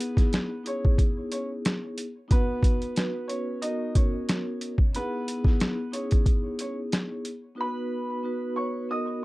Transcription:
0.00 0.13 B3 loud
0.00 0.61 B3 medium
0.00 0.13 D#4 medium
0.00 0.14 E4 medium
0.00 0.14 G#4 loud
0.00 0.61 B4 loud
0.00 closed hi-hat medium
0.16 0.47 B3 loud
0.16 0.48 D#4 medium
0.16 0.48 E4 medium
0.16 0.48 G#4 loud
0.16 kick medium
0.16 snare soft
0.16 closed hi-hat soft
0.33 snare loud
0.33 closed hi-hat medium
0.64 2.02 B3 medium
0.64 2.02 D#4 medium
0.64 2.02 E4 medium
0.64 2.03 G#4 loud
0.64 0.96 C#5 medium
0.64 closed hi-hat medium
0.68 0.97 C#4 medium
0.85 kick medium
0.98 kick medium
0.98 closed hi-hat medium
1.32 1.48 C#4 medium
1.32 1.48 C#5 medium
1.32 closed hi-hat medium
1.65 snare loud
1.65 closed hi-hat medium
1.98 closed hi-hat medium
2.28 2.90 B3 medium
2.28 2.91 D#4 medium
2.28 2.91 F#4 medium
2.28 2.92 B4 loud
2.28 kick loud
2.28 closed hi-hat medium
2.32 3.27 B3 medium
2.32 3.26 B4 loud
2.63 kick loud
2.63 closed hi-hat medium
2.82 closed hi-hat soft
2.95 3.57 B3 medium
2.95 3.57 D#4 medium
2.95 3.58 F#4 medium
2.95 3.58 B4 loud
2.95 snare loud
2.95 closed hi-hat medium
3.28 3.59 C#4 medium
3.28 3.58 C#5 medium
3.28 closed hi-hat medium
3.62 4.69 B3 medium
3.62 4.69 D#4 medium
3.62 3.92 D#4 medium
3.62 4.70 F#4 medium
3.62 4.70 A#4 loud
3.62 3.92 D#5 medium
3.62 closed hi-hat medium
3.95 4.91 C#4 medium
3.95 4.90 C#5 medium
3.95 kick medium
3.95 closed hi-hat medium
4.29 snare loud
4.29 closed hi-hat medium
4.61 closed hi-hat medium
4.78 kick medium
4.93 5.41 B3 loud
4.93 5.90 B3 medium
4.93 5.41 D#4 medium
4.93 5.41 E4 medium
4.93 5.42 G#4 loud
4.93 5.90 B4 loud
4.93 closed hi-hat medium
5.28 closed hi-hat medium
5.44 5.75 B3 loud
5.44 5.75 D#4 medium
5.44 5.76 E4 medium
5.44 5.76 G#4 loud
5.44 kick loud
5.44 snare soft
5.60 snare loud
5.60 closed hi-hat medium
5.91 7.29 B3 medium
5.91 6.23 C#4 medium
5.91 7.30 D#4 medium
5.91 7.30 E4 medium
5.91 7.30 G#4 loud
5.91 6.23 C#5 medium
5.91 closed hi-hat medium
6.11 kick medium
6.11 closed hi-hat medium
6.26 kick medium
6.26 closed hi-hat medium
6.59 6.77 C#4 medium
6.59 6.76 C#5 medium
6.59 closed hi-hat medium
6.92 snare loud
6.92 closed hi-hat medium
7.25 closed hi-hat medium
7.55 8.18 B3 medium
7.55 8.18 D#4 medium
7.55 8.19 F#4 medium
7.55 8.19 B4 loud
7.61 8.55 B4 medium
7.61 8.54 B5 loud
8.23 8.85 B3 medium
8.23 8.85 D#4 medium
8.23 8.85 F#4 medium
8.23 8.86 B4 loud
8.56 8.86 C#5 medium
8.56 8.86 C#6 medium
8.89 9.25 B3 loud
8.89 9.25 D#4 medium
8.89 9.25 F#4 medium
8.89 9.25 A#4 loud
8.89 9.20 D#5 medium
8.89 9.20 D#6 medium

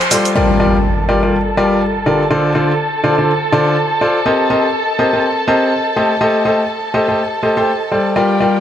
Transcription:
0.00 0.37 C5 medium
0.00 0.37 C6 medium
0.00 closed hi-hat soft
0.00 cabasa soft
0.11 0.32 G3 medium
0.11 0.32 F4 medium
0.11 0.32 A4 medium
0.11 0.32 C5 medium
0.11 0.32 D5 medium
0.11 open hi-hat loud
0.11 cabasa medium
0.25 closed hi-hat medium
0.25 cabasa soft
0.35 0.57 G3 medium
0.35 0.57 F4 medium
0.35 0.57 G4 medium
0.35 8.17 A4 medium
0.35 0.57 A#4 medium
0.35 0.57 D5 medium
0.35 8.17 A5 medium
0.35 impact medium
0.60 0.76 G3 medium
0.60 0.76 F4 medium
0.60 0.76 G4 medium
0.60 0.76 A#4 medium
0.60 0.76 D5 medium
1.09 1.20 G3 medium
1.09 1.19 F4 medium
1.09 1.19 G4 medium
1.09 1.19 A#4 medium
1.09 1.19 D5 medium
1.23 1.35 G3 medium
1.23 1.35 F4 medium
1.23 1.35 G4 medium
1.23 1.35 A#4 medium
1.23 1.35 D5 medium
1.57 1.80 G3 medium
1.57 1.80 F4 medium
1.57 1.80 G4 medium
1.57 1.80 A#4 medium
1.57 1.80 D5 loud
2.06 2.22 D3 medium
2.06 2.22 F4 medium
2.06 2.22 G4 medium
2.06 2.22 A#4 medium
2.06 2.22 D5 medium
2.31 2.52 D3 medium
2.31 2.52 F4 medium
2.31 2.52 A4 medium
2.31 2.52 C5 medium
2.31 2.52 D5 medium
2.55 2.71 D3 medium
2.55 2.71 F4 medium
2.55 2.71 A4 medium
2.55 2.71 C5 medium
2.55 2.71 D5 medium
3.04 3.15 D3 medium
3.04 3.15 F4 medium
3.04 3.15 A4 medium
3.04 3.15 C5 medium
3.04 3.15 D5 medium
3.18 3.30 D3 medium
3.18 3.30 F4 medium
3.18 3.30 A4 medium
3.18 3.30 C5 medium
3.18 3.30 D5 medium
3.52 3.75 D3 medium
3.52 3.75 F4 medium
3.52 3.75 A4 medium
3.52 3.75 C5 medium
3.52 3.75 D5 loud
4.01 4.17 F4 medium
4.01 4.17 A4 medium
4.01 4.17 C5 medium
4.01 4.17 D5 medium
4.26 4.47 C4 medium
4.26 4.47 G4 medium
4.26 4.47 A#4 medium
4.26 4.47 C5 medium
4.26 4.47 D#5 loud
4.50 4.66 C4 medium
4.50 4.66 G4 medium
4.50 4.66 A#4 medium
4.50 4.66 C5 medium
4.50 4.66 D#5 medium
4.99 5.10 C4 medium
4.99 5.10 G4 medium
4.99 5.10 A#4 medium
4.99 5.10 C5 medium
4.99 5.10 D#5 medium
5.13 5.26 C4 medium
5.13 5.26 G4 medium
5.13 5.26 A#4 medium
5.13 5.26 C5 medium
5.13 5.26 D#5 medium
5.48 5.71 C4 medium
5.48 5.71 G4 medium
5.48 5.71 A#4 medium
5.48 5.71 C5 medium
5.48 5.71 D#5 loud
5.96 6.12 A3 medium
5.96 6.12 G4 medium
5.96 6.12 A4 medium
5.96 6.12 C5 medium
5.96 6.12 D#5 medium
6.21 6.42 A3 medium
6.21 6.42 G4 medium
6.21 6.42 A4 medium
6.21 6.42 C5 medium
6.21 6.42 D#5 medium
6.45 6.61 A3 medium
6.45 6.61 G4 medium
6.45 6.61 A4 medium
6.45 6.61 C5 medium
6.45 6.61 D#5 medium
6.94 7.05 A3 medium
6.94 7.05 G4 medium
6.94 7.05 A4 medium
6.94 7.05 C5 medium
6.94 7.05 D#5 medium
7.08 7.21 A3 medium
7.08 7.21 G4 medium
7.08 7.21 A4 medium
7.08 7.21 C5 medium
7.08 7.21 D#5 medium
7.43 7.55 A3 medium
7.43 7.55 G4 medium
7.43 7.55 A4 medium
7.43 7.55 C5 medium
7.43 7.55 D#5 medium
7.57 7.70 A3 medium
7.57 7.70 G4 medium
7.57 7.70 A4 medium
7.57 7.69 C5 medium
7.57 7.70 G5 medium
7.92 8.13 G3 medium
7.92 8.13 G4 medium
7.92 8.13 A4 medium
7.92 8.13 C5 medium
7.92 8.13 D5 medium
8.16 8.37 G3 medium
8.16 8.37 F4 medium
8.16 8.37 G4 medium
8.16 8.60 G4 medium
8.16 8.37 A#4 medium
8.16 8.37 D5 medium
8.16 8.60 G5 medium
8.40 8.56 G3 medium
8.40 8.56 F4 medium
8.40 8.56 G4 medium
8.40 8.56 A#4 medium
8.40 8.56 D5 medium

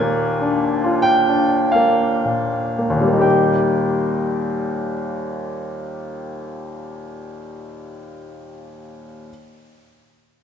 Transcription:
0.00 2.88 D#2 medium
0.00 0.24 A#2 soft
0.00 0.66 A#3 soft
0.00 1.03 G#5 medium
0.41 1.09 D4 soft
0.84 1.55 F4 soft
1.02 1.72 G5 medium
1.28 2.03 D4 soft
1.72 2.57 A#3 soft
1.72 3.23 F5 medium
2.25 2.94 A#2 soft
2.78 3.06 A#3 soft
2.90 7.80 D#2 soft
2.96 7.86 A#2 soft
3.01 7.92 G3 soft
3.07 7.97 A#3 soft
3.13 8.03 D#4 soft
3.19 8.09 G4 soft
3.19 8.12 G5 soft

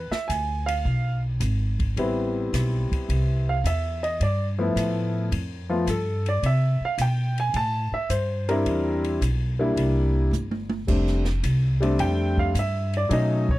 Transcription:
0.11 0.28 E5 medium
0.11 muted upright bass stroke soft
0.11 snare medium
0.28 0.83 D2 medium
0.28 0.66 G#5 medium
0.28 kick soft
0.28 hi-hat pedal medium
0.28 ride medium
0.66 1.19 F5 medium
0.66 ride medium
0.85 1.39 B1 medium
0.85 kick soft
1.40 1.95 G#1 medium
1.40 kick soft
1.40 hi-hat pedal medium
1.40 ride medium
1.79 kick soft
1.79 ride soft
1.97 2.51 A1 medium
1.97 3.54 G3 medium
1.97 3.55 B3 medium
1.97 3.55 C4 medium
1.97 3.55 E4 medium
1.97 kick soft
1.97 ride medium
2.53 2.88 B1 medium
2.53 kick soft
2.53 snare soft
2.53 hi-hat pedal medium
2.53 ride medium
2.91 muted upright bass stroke soft
2.91 kick soft
2.91 ride soft
3.09 3.62 C2 medium
3.09 kick soft
3.09 ride medium
3.49 3.65 F5 medium
3.64 4.18 E2 medium
3.64 4.03 E5 medium
3.64 kick soft
3.64 hi-hat pedal medium
3.64 ride medium
4.03 4.20 D#5 medium
4.03 ride soft
4.20 4.74 G2 medium
4.20 4.45 D5 medium
4.20 kick soft
4.20 ride medium
4.58 5.28 F3 medium
4.58 5.28 A3 medium
4.58 5.28 B3 medium
4.58 5.29 E4 medium
4.76 5.30 A2 medium
4.76 kick soft
4.76 hi-hat pedal medium
4.76 ride medium
5.32 5.85 F2 medium
5.32 kick soft
5.32 ride medium
5.69 5.85 F3 medium
5.69 5.85 A3 medium
5.69 5.85 B3 medium
5.69 5.86 F4 medium
5.87 6.41 G2 medium
5.87 6.26 A4 medium
5.87 kick soft
5.87 hi-hat pedal medium
5.87 ride medium
6.26 6.44 D5 medium
6.26 ride soft
6.43 6.78 C3 medium
6.43 6.82 E5 medium
6.43 kick soft
6.43 ride medium
6.81 muted upright bass stroke soft
6.85 7.00 F5 medium
6.98 7.52 B2 medium
6.98 7.37 G5 medium
6.98 kick soft
6.98 hi-hat pedal medium
6.98 ride medium
7.38 7.55 G#5 medium
7.38 ride soft
7.54 7.90 A2 medium
7.54 7.93 A5 loud
7.54 kick soft
7.54 ride medium
7.92 8.10 E5 medium
7.92 muted upright bass stroke soft
8.09 8.64 G2 medium
8.09 8.47 C5 medium
8.09 kick soft
8.09 hi-hat pedal medium
8.09 ride medium
8.49 9.18 G3 medium
8.49 9.18 C4 medium
8.49 9.19 D4 medium
8.49 9.19 E4 medium
8.49 9.00 A#4 medium
8.49 ride soft
8.66 9.20 E2 medium
8.66 kick soft
8.66 ride medium
9.04 ride soft
9.21 9.75 B1 medium
9.21 kick soft
9.21 hi-hat pedal soft
9.21 ride medium
9.59 10.29 G3 medium
9.59 10.29 A#3 medium
9.59 10.29 D4 medium
9.59 10.30 E4 medium
9.76 10.31 C2 medium
9.76 kick soft
9.76 ride medium
10.31 10.86 G1 medium
10.31 hi-hat pedal medium
10.31 high tom soft
10.51 high tom medium
10.69 high tom medium
10.87 11.42 F1 medium
10.87 11.22 G3 medium
10.87 11.23 A3 soft
10.87 11.23 C4 soft
10.87 11.23 D4 medium
10.87 kick medium
10.87 crash medium
11.07 snare soft
11.25 snare soft
11.43 11.97 C2 medium
11.43 kick soft
11.43 hi-hat pedal medium
11.43 ride medium
11.80 12.51 G3 medium
11.80 12.51 A3 medium
11.80 12.52 C4 medium
11.80 12.51 D4 medium
11.80 ride soft
11.99 12.53 F2 medium
11.99 12.37 G5 medium
11.99 kick soft
11.99 ride medium
12.38 12.55 F5 medium
12.38 kick medium
12.54 13.09 G2 medium
12.54 kick soft
12.54 hi-hat pedal medium
12.54 ride medium
12.59 12.94 E5 medium
12.93 13.12 D5 medium
12.93 ride soft
13.09 13.59 B2 medium
13.09 13.44 F#3 medium
13.09 13.45 A3 medium
13.09 13.45 C#4 medium
13.09 13.45 D#4 medium
13.09 kick soft
13.09 ride medium
13.13 13.49 D#5 medium
13.49 13.59 C#5 medium
13.49 kick medium

